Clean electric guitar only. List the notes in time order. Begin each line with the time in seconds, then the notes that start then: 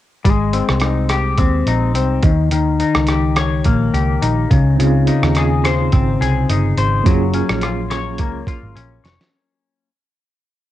0.24 G#3
0.53 C4
0.81 D#4
1.10 G4
1.38 C4
1.68 D#4
1.95 C4
2.23 D#3
2.52 D#3
2.80 D#4
3.08 G4
3.37 C#5
3.66 A#3
3.94 G4
4.22 D#4
4.50 C#3
4.80 C#3
5.08 D#4
5.37 G#4
5.64 C5
5.93 C4
6.21 G#4
6.50 D#4
6.78 C5
7.06 F#3
7.34 C#4
7.62 F4
7.90 C#5
8.19 A#3
8.48 F4
8.76 C#4
9.04 C#5